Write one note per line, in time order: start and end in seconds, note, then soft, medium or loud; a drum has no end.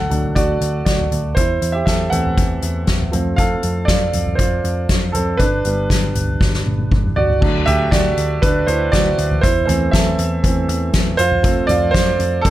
0.00 0.33 A4 medium
0.00 0.38 F#5 medium
0.10 0.31 D2 medium
0.10 0.44 F#3 soft
0.10 0.44 A3 soft
0.10 0.44 D4 soft
0.10 closed hi-hat medium
0.10 floor tom medium
0.24 floor tom medium
0.35 0.57 D2 medium
0.35 0.83 F#4 medium
0.35 0.84 D5 medium
0.35 kick medium
0.35 closed hi-hat medium
0.61 0.82 D2 medium
0.61 closed hi-hat medium
0.85 1.07 D2 medium
0.85 1.33 F#4 medium
0.85 1.38 D5 medium
0.85 kick medium
0.85 snare medium
0.85 closed hi-hat medium
0.99 floor tom medium
1.12 1.32 D2 medium
1.12 closed hi-hat medium
1.12 floor tom soft
1.35 1.58 E2 medium
1.35 1.72 E4 medium
1.35 1.75 C5 medium
1.35 kick loud
1.35 closed hi-hat medium
1.62 1.83 E2 medium
1.62 closed hi-hat medium
1.72 1.80 G4 medium
1.72 1.77 E5 medium
1.86 2.08 E2 medium
1.86 2.11 A4 medium
1.86 2.12 E5 medium
1.86 kick loud
1.86 snare medium
1.86 closed hi-hat medium
2.10 2.33 E2 medium
2.10 2.83 E3 soft
2.10 2.84 A3 soft
2.10 2.84 C4 medium
2.10 2.84 A4 medium
2.10 2.83 F#5 medium
2.10 closed hi-hat medium
2.10 floor tom medium
2.25 floor tom medium
2.37 2.58 E2 medium
2.37 kick medium
2.37 closed hi-hat medium
2.62 2.84 E2 medium
2.62 closed hi-hat medium
2.87 3.09 E2 medium
2.87 kick medium
2.87 snare medium
2.87 closed hi-hat medium
3.01 floor tom medium
3.12 3.55 F2 medium
3.12 3.46 F3 medium
3.12 3.46 A3 soft
3.12 3.46 C4 medium
3.12 closed hi-hat medium
3.12 floor tom soft
3.36 3.86 A4 medium
3.36 3.89 F5 loud
3.36 kick loud
3.36 closed hi-hat medium
3.63 3.84 F2 medium
3.63 closed hi-hat medium
3.85 4.09 F2 medium
3.85 4.36 F4 medium
3.85 4.34 D5 medium
3.85 kick medium
3.85 snare loud
3.85 closed hi-hat medium
4.13 4.35 F2 medium
4.13 closed hi-hat medium
4.13 floor tom medium
4.26 floor tom medium
4.35 4.60 F2 medium
4.35 4.86 F4 medium
4.35 4.84 C5 medium
4.35 kick medium
4.35 closed hi-hat medium
4.64 4.85 F2 medium
4.64 closed hi-hat medium
4.89 5.10 F2 medium
4.89 kick loud
4.89 snare medium
4.89 closed hi-hat medium
5.12 5.36 F2 medium
5.12 5.38 C4 medium
5.12 5.40 A4 medium
5.12 closed hi-hat medium
5.12 floor tom soft
5.37 5.60 G1 medium
5.37 6.37 D4 medium
5.37 6.36 B4 loud
5.37 kick medium
5.37 closed hi-hat medium
5.64 5.86 G1 medium
5.64 5.98 D3 soft
5.64 5.99 G3 soft
5.64 5.99 B3 soft
5.64 closed hi-hat medium
5.90 6.11 G1 medium
5.90 kick medium
5.90 snare loud
5.90 closed hi-hat medium
6.15 6.36 G1 medium
6.15 closed hi-hat medium
6.15 floor tom medium
6.28 floor tom medium
6.41 6.62 G1 medium
6.41 kick medium
6.41 snare soft
6.53 snare soft
6.66 6.87 G1 medium
6.66 high tom medium
6.79 high tom medium
6.92 7.12 G1 medium
6.92 kick medium
6.92 mid tom medium
7.04 mid tom medium
7.16 7.37 G1 medium
7.16 7.64 F#4 medium
7.16 7.68 D5 medium
7.16 floor tom medium
7.30 floor tom medium
7.41 7.63 D2 medium
7.41 9.39 F#3 medium
7.41 9.39 A3 medium
7.41 8.42 D4 medium
7.41 kick loud
7.41 crash loud
7.66 7.88 D2 loud
7.66 7.91 G4 medium
7.66 7.92 E5 loud
7.66 closed hi-hat medium
7.66 floor tom medium
7.91 8.13 D2 loud
7.91 8.39 F#4 medium
7.91 8.44 D5 medium
7.91 kick loud
7.91 snare loud
7.91 closed hi-hat loud
8.17 8.38 D2 loud
8.17 closed hi-hat medium
8.42 8.63 D2 loud
8.42 8.67 D4 medium
8.42 8.68 B4 loud
8.42 kick loud
8.42 closed hi-hat medium
8.67 8.88 D2 loud
8.67 8.92 E4 medium
8.67 8.91 C5 medium
8.67 closed hi-hat medium
8.92 9.14 D2 loud
8.92 9.40 F#4 medium
8.92 9.44 D5 medium
8.92 kick loud
8.92 snare loud
8.92 closed hi-hat medium
9.18 9.39 D2 loud
9.18 closed hi-hat medium
9.31 floor tom medium
9.41 9.64 E2 loud
9.41 9.67 E4 medium
9.41 9.64 C5 loud
9.41 kick loud
9.41 closed hi-hat medium
9.66 9.89 E2 medium
9.66 10.01 E3 medium
9.66 10.01 A3 medium
9.66 10.02 C4 medium
9.66 9.92 E4 medium
9.66 9.93 C5 medium
9.66 closed hi-hat medium
9.66 floor tom medium
9.91 10.15 E2 loud
9.91 10.65 A4 medium
9.91 10.64 E5 medium
9.91 kick loud
9.91 snare loud
9.91 closed hi-hat loud
10.19 10.39 E2 loud
10.19 closed hi-hat medium
10.43 10.65 E2 medium
10.43 10.66 E3 medium
10.43 10.67 A3 soft
10.43 10.67 C4 medium
10.43 kick loud
10.43 closed hi-hat medium
10.68 10.89 E2 loud
10.68 closed hi-hat medium
10.93 11.15 E2 loud
10.93 kick loud
10.93 snare loud
10.93 closed hi-hat medium
11.17 11.61 F2 loud
11.17 11.67 F4 medium
11.17 11.71 C5 loud
11.17 closed hi-hat medium
11.32 floor tom medium
11.43 12.16 F3 medium
11.43 12.16 A3 soft
11.43 12.17 C4 medium
11.43 kick loud
11.43 closed hi-hat medium
11.67 11.90 F2 loud
11.67 11.93 F4 medium
11.67 11.95 D5 loud
11.67 closed hi-hat medium
11.67 floor tom medium
11.91 12.16 F2 medium
11.91 12.42 F4 medium
11.91 12.45 C5 loud
11.91 kick loud
11.91 snare loud
11.95 closed hi-hat loud
12.19 12.41 F2 loud
12.19 closed hi-hat medium
12.41 12.50 F2 loud
12.41 12.50 C4 medium
12.41 12.50 A4 loud
12.41 kick loud
12.41 closed hi-hat medium